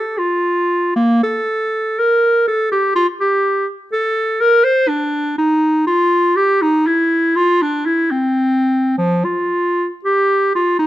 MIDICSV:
0, 0, Header, 1, 2, 480
1, 0, Start_track
1, 0, Tempo, 1025641
1, 456, Time_signature, 4, 2, 24, 8
1, 932, Tempo, 969305
1, 2852, Tempo, 993377
1, 3812, Tempo, 1094891
1, 4772, Tempo, 1013514
1, 5162, End_track
2, 0, Start_track
2, 0, Title_t, "Clarinet"
2, 0, Program_c, 0, 71
2, 0, Note_on_c, 0, 69, 78
2, 84, Note_on_c, 0, 65, 85
2, 91, Note_off_c, 0, 69, 0
2, 446, Note_off_c, 0, 65, 0
2, 449, Note_on_c, 0, 58, 96
2, 573, Note_off_c, 0, 58, 0
2, 577, Note_on_c, 0, 69, 92
2, 931, Note_on_c, 0, 70, 91
2, 939, Note_off_c, 0, 69, 0
2, 1170, Note_off_c, 0, 70, 0
2, 1173, Note_on_c, 0, 69, 94
2, 1288, Note_off_c, 0, 69, 0
2, 1291, Note_on_c, 0, 67, 88
2, 1407, Note_off_c, 0, 67, 0
2, 1410, Note_on_c, 0, 65, 91
2, 1465, Note_off_c, 0, 65, 0
2, 1532, Note_on_c, 0, 67, 84
2, 1760, Note_off_c, 0, 67, 0
2, 1890, Note_on_c, 0, 69, 104
2, 2128, Note_on_c, 0, 70, 96
2, 2135, Note_off_c, 0, 69, 0
2, 2244, Note_on_c, 0, 72, 94
2, 2252, Note_off_c, 0, 70, 0
2, 2363, Note_on_c, 0, 62, 91
2, 2371, Note_off_c, 0, 72, 0
2, 2607, Note_off_c, 0, 62, 0
2, 2610, Note_on_c, 0, 63, 92
2, 2848, Note_off_c, 0, 63, 0
2, 2851, Note_on_c, 0, 65, 89
2, 3090, Note_on_c, 0, 67, 89
2, 3097, Note_off_c, 0, 65, 0
2, 3214, Note_on_c, 0, 63, 90
2, 3221, Note_off_c, 0, 67, 0
2, 3335, Note_on_c, 0, 64, 86
2, 3342, Note_off_c, 0, 63, 0
2, 3573, Note_on_c, 0, 65, 96
2, 3580, Note_off_c, 0, 64, 0
2, 3699, Note_on_c, 0, 62, 91
2, 3707, Note_off_c, 0, 65, 0
2, 3813, Note_on_c, 0, 64, 80
2, 3819, Note_off_c, 0, 62, 0
2, 3924, Note_on_c, 0, 60, 92
2, 3931, Note_off_c, 0, 64, 0
2, 4300, Note_off_c, 0, 60, 0
2, 4303, Note_on_c, 0, 53, 92
2, 4422, Note_on_c, 0, 65, 81
2, 4428, Note_off_c, 0, 53, 0
2, 4697, Note_off_c, 0, 65, 0
2, 4772, Note_on_c, 0, 67, 93
2, 5008, Note_off_c, 0, 67, 0
2, 5012, Note_on_c, 0, 65, 81
2, 5121, Note_off_c, 0, 65, 0
2, 5123, Note_on_c, 0, 63, 87
2, 5162, Note_off_c, 0, 63, 0
2, 5162, End_track
0, 0, End_of_file